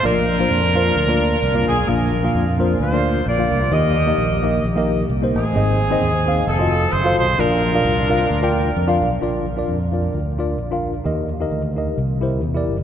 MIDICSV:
0, 0, Header, 1, 4, 480
1, 0, Start_track
1, 0, Tempo, 458716
1, 45, Time_signature, 4, 2, 24, 8
1, 13429, End_track
2, 0, Start_track
2, 0, Title_t, "Horn section"
2, 0, Program_c, 0, 61
2, 49, Note_on_c, 0, 70, 121
2, 55, Note_on_c, 0, 62, 83
2, 55, Note_on_c, 0, 65, 81
2, 1715, Note_off_c, 0, 70, 0
2, 1718, Note_off_c, 0, 62, 0
2, 1718, Note_off_c, 0, 65, 0
2, 1753, Note_on_c, 0, 68, 96
2, 1969, Note_off_c, 0, 68, 0
2, 1970, Note_on_c, 0, 70, 88
2, 1971, Note_on_c, 0, 65, 66
2, 1972, Note_on_c, 0, 62, 66
2, 2669, Note_off_c, 0, 70, 0
2, 2891, Note_off_c, 0, 65, 0
2, 2892, Note_off_c, 0, 62, 0
2, 2936, Note_on_c, 0, 65, 64
2, 2939, Note_on_c, 0, 72, 95
2, 3383, Note_off_c, 0, 72, 0
2, 3415, Note_off_c, 0, 65, 0
2, 3426, Note_on_c, 0, 74, 90
2, 3427, Note_on_c, 0, 65, 62
2, 3427, Note_on_c, 0, 70, 67
2, 3867, Note_off_c, 0, 70, 0
2, 3867, Note_off_c, 0, 74, 0
2, 3868, Note_off_c, 0, 65, 0
2, 3896, Note_on_c, 0, 75, 102
2, 3897, Note_on_c, 0, 67, 80
2, 3899, Note_on_c, 0, 70, 84
2, 4814, Note_off_c, 0, 67, 0
2, 4815, Note_off_c, 0, 70, 0
2, 4856, Note_off_c, 0, 75, 0
2, 5597, Note_on_c, 0, 68, 103
2, 5601, Note_on_c, 0, 63, 72
2, 5606, Note_on_c, 0, 60, 80
2, 6730, Note_off_c, 0, 68, 0
2, 6732, Note_off_c, 0, 63, 0
2, 6735, Note_off_c, 0, 60, 0
2, 6774, Note_on_c, 0, 69, 108
2, 6779, Note_on_c, 0, 60, 78
2, 6779, Note_on_c, 0, 63, 79
2, 7246, Note_on_c, 0, 72, 112
2, 7253, Note_off_c, 0, 69, 0
2, 7502, Note_off_c, 0, 72, 0
2, 7515, Note_on_c, 0, 72, 116
2, 7692, Note_off_c, 0, 60, 0
2, 7692, Note_off_c, 0, 63, 0
2, 7716, Note_off_c, 0, 72, 0
2, 7733, Note_on_c, 0, 65, 74
2, 7734, Note_on_c, 0, 70, 102
2, 7736, Note_on_c, 0, 62, 78
2, 9392, Note_off_c, 0, 65, 0
2, 9393, Note_off_c, 0, 62, 0
2, 9435, Note_off_c, 0, 70, 0
2, 13429, End_track
3, 0, Start_track
3, 0, Title_t, "Tine electric piano"
3, 0, Program_c, 1, 4
3, 33, Note_on_c, 1, 58, 77
3, 38, Note_on_c, 1, 62, 73
3, 44, Note_on_c, 1, 46, 68
3, 44, Note_on_c, 1, 65, 71
3, 49, Note_on_c, 1, 70, 73
3, 53, Note_on_c, 1, 74, 95
3, 274, Note_off_c, 1, 58, 0
3, 277, Note_off_c, 1, 62, 0
3, 280, Note_off_c, 1, 65, 0
3, 282, Note_off_c, 1, 70, 0
3, 285, Note_off_c, 1, 74, 0
3, 407, Note_on_c, 1, 58, 80
3, 413, Note_on_c, 1, 62, 71
3, 418, Note_on_c, 1, 65, 68
3, 421, Note_on_c, 1, 70, 76
3, 428, Note_on_c, 1, 72, 85
3, 623, Note_off_c, 1, 58, 0
3, 626, Note_off_c, 1, 62, 0
3, 629, Note_off_c, 1, 65, 0
3, 630, Note_off_c, 1, 70, 0
3, 633, Note_off_c, 1, 72, 0
3, 750, Note_off_c, 1, 46, 0
3, 783, Note_on_c, 1, 58, 82
3, 787, Note_on_c, 1, 62, 73
3, 792, Note_on_c, 1, 65, 80
3, 799, Note_on_c, 1, 70, 75
3, 799, Note_on_c, 1, 72, 89
3, 979, Note_off_c, 1, 58, 0
3, 981, Note_off_c, 1, 62, 0
3, 983, Note_off_c, 1, 65, 0
3, 986, Note_off_c, 1, 70, 0
3, 986, Note_off_c, 1, 72, 0
3, 1130, Note_on_c, 1, 58, 90
3, 1132, Note_on_c, 1, 62, 80
3, 1141, Note_on_c, 1, 65, 77
3, 1143, Note_on_c, 1, 70, 78
3, 1150, Note_on_c, 1, 74, 88
3, 1415, Note_off_c, 1, 58, 0
3, 1416, Note_off_c, 1, 62, 0
3, 1420, Note_off_c, 1, 65, 0
3, 1421, Note_off_c, 1, 70, 0
3, 1425, Note_off_c, 1, 74, 0
3, 1609, Note_on_c, 1, 58, 76
3, 1614, Note_on_c, 1, 62, 72
3, 1618, Note_on_c, 1, 65, 71
3, 1624, Note_on_c, 1, 70, 66
3, 1629, Note_on_c, 1, 74, 76
3, 1831, Note_off_c, 1, 58, 0
3, 1834, Note_off_c, 1, 62, 0
3, 1836, Note_off_c, 1, 65, 0
3, 1839, Note_off_c, 1, 70, 0
3, 1841, Note_off_c, 1, 74, 0
3, 1957, Note_on_c, 1, 58, 77
3, 1961, Note_on_c, 1, 62, 66
3, 1967, Note_on_c, 1, 46, 73
3, 1967, Note_on_c, 1, 65, 66
3, 1973, Note_on_c, 1, 70, 71
3, 1980, Note_on_c, 1, 77, 82
3, 2199, Note_off_c, 1, 58, 0
3, 2201, Note_off_c, 1, 62, 0
3, 2204, Note_off_c, 1, 65, 0
3, 2207, Note_off_c, 1, 70, 0
3, 2210, Note_off_c, 1, 77, 0
3, 2331, Note_on_c, 1, 58, 70
3, 2338, Note_on_c, 1, 62, 70
3, 2345, Note_on_c, 1, 65, 64
3, 2349, Note_on_c, 1, 70, 72
3, 2354, Note_on_c, 1, 77, 83
3, 2547, Note_off_c, 1, 58, 0
3, 2551, Note_off_c, 1, 62, 0
3, 2555, Note_off_c, 1, 65, 0
3, 2556, Note_off_c, 1, 70, 0
3, 2559, Note_off_c, 1, 77, 0
3, 2674, Note_off_c, 1, 46, 0
3, 2705, Note_on_c, 1, 58, 77
3, 2712, Note_on_c, 1, 62, 71
3, 2717, Note_on_c, 1, 65, 74
3, 2719, Note_on_c, 1, 70, 75
3, 2727, Note_on_c, 1, 72, 87
3, 2902, Note_off_c, 1, 58, 0
3, 2905, Note_off_c, 1, 62, 0
3, 2908, Note_off_c, 1, 65, 0
3, 2909, Note_off_c, 1, 70, 0
3, 2913, Note_off_c, 1, 72, 0
3, 3057, Note_on_c, 1, 58, 70
3, 3062, Note_on_c, 1, 62, 73
3, 3066, Note_on_c, 1, 65, 63
3, 3071, Note_on_c, 1, 70, 68
3, 3077, Note_on_c, 1, 74, 80
3, 3341, Note_off_c, 1, 58, 0
3, 3343, Note_off_c, 1, 62, 0
3, 3345, Note_off_c, 1, 65, 0
3, 3348, Note_off_c, 1, 70, 0
3, 3350, Note_off_c, 1, 74, 0
3, 3533, Note_on_c, 1, 58, 74
3, 3539, Note_on_c, 1, 62, 68
3, 3544, Note_on_c, 1, 65, 71
3, 3547, Note_on_c, 1, 70, 68
3, 3554, Note_on_c, 1, 77, 88
3, 3755, Note_off_c, 1, 58, 0
3, 3758, Note_off_c, 1, 62, 0
3, 3761, Note_off_c, 1, 65, 0
3, 3762, Note_off_c, 1, 70, 0
3, 3766, Note_off_c, 1, 77, 0
3, 3881, Note_on_c, 1, 58, 75
3, 3886, Note_on_c, 1, 63, 76
3, 3889, Note_on_c, 1, 51, 71
3, 3891, Note_on_c, 1, 67, 73
3, 3897, Note_on_c, 1, 70, 72
3, 3902, Note_on_c, 1, 75, 86
3, 4122, Note_off_c, 1, 58, 0
3, 4125, Note_off_c, 1, 63, 0
3, 4128, Note_off_c, 1, 67, 0
3, 4130, Note_off_c, 1, 70, 0
3, 4133, Note_off_c, 1, 75, 0
3, 4256, Note_on_c, 1, 58, 76
3, 4260, Note_on_c, 1, 63, 70
3, 4265, Note_on_c, 1, 67, 75
3, 4267, Note_on_c, 1, 70, 68
3, 4273, Note_on_c, 1, 75, 91
3, 4471, Note_off_c, 1, 58, 0
3, 4474, Note_off_c, 1, 63, 0
3, 4476, Note_off_c, 1, 67, 0
3, 4477, Note_off_c, 1, 70, 0
3, 4480, Note_off_c, 1, 75, 0
3, 4595, Note_off_c, 1, 51, 0
3, 4631, Note_on_c, 1, 58, 76
3, 4634, Note_on_c, 1, 63, 77
3, 4643, Note_on_c, 1, 67, 82
3, 4645, Note_on_c, 1, 70, 67
3, 4654, Note_on_c, 1, 75, 97
3, 4826, Note_off_c, 1, 58, 0
3, 4828, Note_off_c, 1, 63, 0
3, 4832, Note_off_c, 1, 67, 0
3, 4833, Note_off_c, 1, 70, 0
3, 4837, Note_off_c, 1, 75, 0
3, 4978, Note_on_c, 1, 58, 85
3, 4984, Note_on_c, 1, 63, 83
3, 4993, Note_on_c, 1, 67, 85
3, 4997, Note_on_c, 1, 70, 82
3, 4999, Note_on_c, 1, 75, 95
3, 5262, Note_off_c, 1, 58, 0
3, 5265, Note_off_c, 1, 63, 0
3, 5269, Note_off_c, 1, 67, 0
3, 5271, Note_off_c, 1, 70, 0
3, 5272, Note_off_c, 1, 75, 0
3, 5461, Note_on_c, 1, 58, 75
3, 5465, Note_on_c, 1, 63, 74
3, 5471, Note_on_c, 1, 67, 67
3, 5475, Note_on_c, 1, 70, 72
3, 5479, Note_on_c, 1, 72, 84
3, 5680, Note_off_c, 1, 58, 0
3, 5682, Note_off_c, 1, 63, 0
3, 5685, Note_off_c, 1, 67, 0
3, 5687, Note_off_c, 1, 70, 0
3, 5689, Note_off_c, 1, 72, 0
3, 5806, Note_on_c, 1, 60, 81
3, 5813, Note_on_c, 1, 63, 73
3, 5815, Note_on_c, 1, 68, 79
3, 5818, Note_on_c, 1, 44, 73
3, 5822, Note_on_c, 1, 72, 78
3, 5826, Note_on_c, 1, 75, 86
3, 6045, Note_off_c, 1, 60, 0
3, 6048, Note_off_c, 1, 63, 0
3, 6049, Note_off_c, 1, 68, 0
3, 6053, Note_off_c, 1, 72, 0
3, 6055, Note_off_c, 1, 75, 0
3, 6177, Note_on_c, 1, 60, 95
3, 6182, Note_on_c, 1, 63, 94
3, 6189, Note_on_c, 1, 68, 84
3, 6193, Note_on_c, 1, 72, 95
3, 6197, Note_on_c, 1, 75, 103
3, 6392, Note_off_c, 1, 60, 0
3, 6394, Note_off_c, 1, 63, 0
3, 6397, Note_off_c, 1, 68, 0
3, 6399, Note_off_c, 1, 72, 0
3, 6401, Note_off_c, 1, 75, 0
3, 6518, Note_off_c, 1, 44, 0
3, 6553, Note_on_c, 1, 60, 84
3, 6558, Note_on_c, 1, 63, 71
3, 6562, Note_on_c, 1, 68, 71
3, 6569, Note_on_c, 1, 72, 71
3, 6574, Note_on_c, 1, 77, 91
3, 6746, Note_off_c, 1, 60, 0
3, 6749, Note_off_c, 1, 63, 0
3, 6750, Note_off_c, 1, 68, 0
3, 6754, Note_off_c, 1, 72, 0
3, 6756, Note_off_c, 1, 77, 0
3, 6895, Note_on_c, 1, 65, 78
3, 6904, Note_on_c, 1, 66, 73
3, 6906, Note_on_c, 1, 69, 71
3, 6910, Note_on_c, 1, 72, 66
3, 6916, Note_on_c, 1, 75, 82
3, 7179, Note_off_c, 1, 65, 0
3, 7183, Note_off_c, 1, 66, 0
3, 7184, Note_off_c, 1, 69, 0
3, 7186, Note_off_c, 1, 72, 0
3, 7189, Note_off_c, 1, 75, 0
3, 7370, Note_on_c, 1, 65, 82
3, 7373, Note_on_c, 1, 66, 78
3, 7379, Note_on_c, 1, 69, 73
3, 7385, Note_on_c, 1, 72, 72
3, 7390, Note_on_c, 1, 77, 91
3, 7593, Note_off_c, 1, 65, 0
3, 7594, Note_off_c, 1, 66, 0
3, 7597, Note_off_c, 1, 69, 0
3, 7600, Note_off_c, 1, 72, 0
3, 7602, Note_off_c, 1, 77, 0
3, 7724, Note_on_c, 1, 62, 75
3, 7732, Note_on_c, 1, 65, 73
3, 7735, Note_on_c, 1, 70, 73
3, 7740, Note_on_c, 1, 46, 70
3, 7743, Note_on_c, 1, 74, 74
3, 7747, Note_on_c, 1, 77, 83
3, 7962, Note_off_c, 1, 62, 0
3, 7966, Note_off_c, 1, 65, 0
3, 7967, Note_off_c, 1, 70, 0
3, 7971, Note_off_c, 1, 74, 0
3, 7973, Note_off_c, 1, 77, 0
3, 8093, Note_on_c, 1, 62, 79
3, 8099, Note_on_c, 1, 65, 72
3, 8106, Note_on_c, 1, 70, 72
3, 8110, Note_on_c, 1, 74, 79
3, 8114, Note_on_c, 1, 77, 87
3, 8307, Note_off_c, 1, 62, 0
3, 8310, Note_off_c, 1, 65, 0
3, 8314, Note_off_c, 1, 70, 0
3, 8316, Note_off_c, 1, 74, 0
3, 8318, Note_off_c, 1, 77, 0
3, 8437, Note_off_c, 1, 46, 0
3, 8460, Note_on_c, 1, 62, 79
3, 8466, Note_on_c, 1, 65, 69
3, 8469, Note_on_c, 1, 70, 75
3, 8478, Note_on_c, 1, 74, 75
3, 8484, Note_on_c, 1, 77, 94
3, 8658, Note_off_c, 1, 62, 0
3, 8660, Note_off_c, 1, 65, 0
3, 8662, Note_off_c, 1, 70, 0
3, 8667, Note_off_c, 1, 74, 0
3, 8669, Note_off_c, 1, 77, 0
3, 8811, Note_on_c, 1, 62, 89
3, 8815, Note_on_c, 1, 65, 80
3, 8820, Note_on_c, 1, 70, 86
3, 8824, Note_on_c, 1, 74, 81
3, 8830, Note_on_c, 1, 79, 97
3, 9095, Note_off_c, 1, 62, 0
3, 9097, Note_off_c, 1, 65, 0
3, 9099, Note_off_c, 1, 70, 0
3, 9102, Note_off_c, 1, 74, 0
3, 9104, Note_off_c, 1, 79, 0
3, 9286, Note_on_c, 1, 62, 94
3, 9290, Note_on_c, 1, 65, 86
3, 9294, Note_on_c, 1, 70, 77
3, 9297, Note_on_c, 1, 74, 84
3, 9303, Note_on_c, 1, 77, 102
3, 9509, Note_off_c, 1, 62, 0
3, 9511, Note_off_c, 1, 65, 0
3, 9512, Note_off_c, 1, 70, 0
3, 9514, Note_off_c, 1, 74, 0
3, 9517, Note_off_c, 1, 77, 0
3, 9637, Note_on_c, 1, 62, 79
3, 9647, Note_on_c, 1, 46, 66
3, 9647, Note_on_c, 1, 65, 75
3, 9653, Note_on_c, 1, 70, 74
3, 9660, Note_on_c, 1, 74, 81
3, 9877, Note_off_c, 1, 62, 0
3, 9882, Note_off_c, 1, 65, 0
3, 9885, Note_off_c, 1, 70, 0
3, 9888, Note_off_c, 1, 74, 0
3, 10008, Note_on_c, 1, 62, 74
3, 10016, Note_on_c, 1, 65, 66
3, 10021, Note_on_c, 1, 70, 67
3, 10030, Note_on_c, 1, 74, 84
3, 10224, Note_off_c, 1, 62, 0
3, 10228, Note_off_c, 1, 65, 0
3, 10230, Note_off_c, 1, 70, 0
3, 10235, Note_off_c, 1, 74, 0
3, 10350, Note_off_c, 1, 46, 0
3, 10379, Note_on_c, 1, 62, 64
3, 10387, Note_on_c, 1, 65, 60
3, 10393, Note_on_c, 1, 70, 61
3, 10398, Note_on_c, 1, 74, 72
3, 10648, Note_off_c, 1, 62, 0
3, 10652, Note_off_c, 1, 65, 0
3, 10656, Note_off_c, 1, 70, 0
3, 10658, Note_off_c, 1, 74, 0
3, 10864, Note_on_c, 1, 62, 68
3, 10868, Note_on_c, 1, 65, 71
3, 10879, Note_on_c, 1, 70, 68
3, 10883, Note_on_c, 1, 74, 81
3, 11058, Note_off_c, 1, 62, 0
3, 11060, Note_off_c, 1, 65, 0
3, 11066, Note_off_c, 1, 70, 0
3, 11068, Note_off_c, 1, 74, 0
3, 11205, Note_on_c, 1, 62, 75
3, 11213, Note_on_c, 1, 65, 73
3, 11219, Note_on_c, 1, 70, 68
3, 11228, Note_on_c, 1, 77, 78
3, 11428, Note_off_c, 1, 62, 0
3, 11431, Note_off_c, 1, 65, 0
3, 11434, Note_off_c, 1, 70, 0
3, 11439, Note_off_c, 1, 77, 0
3, 11555, Note_on_c, 1, 63, 76
3, 11560, Note_on_c, 1, 67, 67
3, 11567, Note_on_c, 1, 51, 68
3, 11571, Note_on_c, 1, 70, 76
3, 11575, Note_on_c, 1, 75, 78
3, 11795, Note_off_c, 1, 63, 0
3, 11798, Note_off_c, 1, 67, 0
3, 11803, Note_off_c, 1, 70, 0
3, 11805, Note_off_c, 1, 75, 0
3, 11929, Note_on_c, 1, 63, 77
3, 11938, Note_on_c, 1, 67, 71
3, 11942, Note_on_c, 1, 70, 77
3, 11948, Note_on_c, 1, 75, 83
3, 12143, Note_off_c, 1, 63, 0
3, 12148, Note_off_c, 1, 67, 0
3, 12150, Note_off_c, 1, 70, 0
3, 12153, Note_off_c, 1, 75, 0
3, 12269, Note_off_c, 1, 51, 0
3, 12308, Note_on_c, 1, 63, 68
3, 12314, Note_on_c, 1, 67, 61
3, 12320, Note_on_c, 1, 70, 63
3, 12327, Note_on_c, 1, 75, 75
3, 12524, Note_off_c, 1, 63, 0
3, 12527, Note_off_c, 1, 67, 0
3, 12528, Note_on_c, 1, 48, 64
3, 12530, Note_off_c, 1, 70, 0
3, 12533, Note_off_c, 1, 75, 0
3, 12778, Note_on_c, 1, 64, 76
3, 12781, Note_on_c, 1, 67, 70
3, 12791, Note_on_c, 1, 70, 70
3, 12796, Note_on_c, 1, 72, 81
3, 12974, Note_off_c, 1, 64, 0
3, 12975, Note_off_c, 1, 67, 0
3, 12980, Note_off_c, 1, 70, 0
3, 12983, Note_off_c, 1, 72, 0
3, 13129, Note_on_c, 1, 64, 76
3, 13137, Note_on_c, 1, 67, 72
3, 13143, Note_on_c, 1, 70, 72
3, 13152, Note_on_c, 1, 74, 84
3, 13228, Note_off_c, 1, 48, 0
3, 13348, Note_off_c, 1, 64, 0
3, 13352, Note_off_c, 1, 67, 0
3, 13355, Note_off_c, 1, 70, 0
3, 13359, Note_off_c, 1, 74, 0
3, 13429, End_track
4, 0, Start_track
4, 0, Title_t, "Fingered electric bass"
4, 0, Program_c, 2, 33
4, 47, Note_on_c, 2, 34, 110
4, 455, Note_off_c, 2, 34, 0
4, 524, Note_on_c, 2, 41, 97
4, 934, Note_off_c, 2, 41, 0
4, 1007, Note_on_c, 2, 38, 97
4, 1416, Note_off_c, 2, 38, 0
4, 1488, Note_on_c, 2, 36, 100
4, 1714, Note_off_c, 2, 36, 0
4, 1756, Note_on_c, 2, 35, 81
4, 1939, Note_off_c, 2, 35, 0
4, 1971, Note_on_c, 2, 34, 96
4, 2380, Note_off_c, 2, 34, 0
4, 2457, Note_on_c, 2, 41, 92
4, 2863, Note_off_c, 2, 41, 0
4, 2930, Note_on_c, 2, 38, 97
4, 3340, Note_off_c, 2, 38, 0
4, 3414, Note_on_c, 2, 34, 96
4, 3639, Note_off_c, 2, 34, 0
4, 3678, Note_on_c, 2, 36, 87
4, 3861, Note_off_c, 2, 36, 0
4, 3887, Note_on_c, 2, 39, 100
4, 4299, Note_off_c, 2, 39, 0
4, 4375, Note_on_c, 2, 34, 103
4, 4783, Note_off_c, 2, 34, 0
4, 4854, Note_on_c, 2, 34, 98
4, 5262, Note_off_c, 2, 34, 0
4, 5329, Note_on_c, 2, 36, 94
4, 5557, Note_off_c, 2, 36, 0
4, 5602, Note_on_c, 2, 33, 96
4, 5784, Note_off_c, 2, 33, 0
4, 5815, Note_on_c, 2, 32, 109
4, 6222, Note_off_c, 2, 32, 0
4, 6292, Note_on_c, 2, 39, 98
4, 6700, Note_off_c, 2, 39, 0
4, 6772, Note_on_c, 2, 29, 105
4, 7180, Note_off_c, 2, 29, 0
4, 7249, Note_on_c, 2, 30, 107
4, 7475, Note_off_c, 2, 30, 0
4, 7518, Note_on_c, 2, 35, 93
4, 7700, Note_off_c, 2, 35, 0
4, 7732, Note_on_c, 2, 34, 101
4, 8139, Note_off_c, 2, 34, 0
4, 8211, Note_on_c, 2, 36, 106
4, 8618, Note_off_c, 2, 36, 0
4, 8690, Note_on_c, 2, 38, 96
4, 9097, Note_off_c, 2, 38, 0
4, 9171, Note_on_c, 2, 41, 98
4, 9395, Note_off_c, 2, 41, 0
4, 9436, Note_on_c, 2, 35, 87
4, 9617, Note_off_c, 2, 35, 0
4, 9652, Note_on_c, 2, 34, 82
4, 10058, Note_off_c, 2, 34, 0
4, 10130, Note_on_c, 2, 41, 79
4, 10537, Note_off_c, 2, 41, 0
4, 10607, Note_on_c, 2, 38, 67
4, 11084, Note_off_c, 2, 38, 0
4, 11084, Note_on_c, 2, 34, 75
4, 11493, Note_off_c, 2, 34, 0
4, 11566, Note_on_c, 2, 39, 89
4, 11974, Note_off_c, 2, 39, 0
4, 12045, Note_on_c, 2, 38, 77
4, 12453, Note_off_c, 2, 38, 0
4, 12532, Note_on_c, 2, 36, 74
4, 13008, Note_off_c, 2, 36, 0
4, 13008, Note_on_c, 2, 40, 81
4, 13231, Note_off_c, 2, 40, 0
4, 13276, Note_on_c, 2, 30, 70
4, 13429, Note_off_c, 2, 30, 0
4, 13429, End_track
0, 0, End_of_file